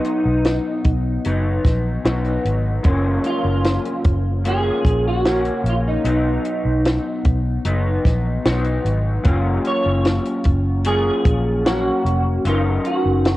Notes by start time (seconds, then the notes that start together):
Already playing: B2 F#3 B3 D#4
0.04 D#4, closed hi-hat
0.26 B1
0.45 snare, closed hi-hat
0.84 B1, kick, closed hi-hat
1.25 F#1 F#3 B3 D#4, closed hi-hat
1.65 A#1, kick, snare, closed hi-hat
2.05 B1 B2 F#3 B3 D#4, snare, closed hi-hat
2.25 closed hi-hat
2.45 G#1, closed hi-hat
2.83 F#1 F#2 C#3 F3 A#3 C#4, kick, closed hi-hat
3.24 F4, closed hi-hat
3.44 F#1
3.64 snare, closed hi-hat
3.85 closed hi-hat
4.04 F#1, kick, closed hi-hat
4.44 C#3 F3 A#3 C#4 G#4, closed hi-hat
4.85 A#1, kick, closed hi-hat
5.08 F#4
5.25 C#3 A#3 C#4, snare, closed hi-hat
5.45 closed hi-hat
5.64 A#1, closed hi-hat
5.70 F4
5.88 D#4
6.04 B1 B2 F#3 B3 D#4, closed hi-hat
6.45 closed hi-hat
6.65 B1
6.85 snare, closed hi-hat
7.25 B1, kick, closed hi-hat
7.65 F#1 F#3 B3 D#4, closed hi-hat
8.05 A#1, kick, snare, closed hi-hat
8.45 B1 B2 F#3 B3 D#4, snare, closed hi-hat
8.64 closed hi-hat
8.85 G#1, closed hi-hat
9.24 F#1 F#3 A#3 C#4 F4, kick, closed hi-hat
9.64 C#5, closed hi-hat
9.86 F#1
10.05 snare, closed hi-hat
10.25 closed hi-hat
10.44 F#1, kick, closed hi-hat
10.84 F#3 A#3 C#4 F4 G#4, closed hi-hat
11.25 A#1, kick, closed hi-hat
11.65 F#3 A#3 C#4 F#4, snare, closed hi-hat
12.05 F1, closed hi-hat
12.45 F#1 F#3 C#4 D#4 F4 A#4, closed hi-hat
12.85 F#4, closed hi-hat
13.06 F#1
13.25 snare, closed hi-hat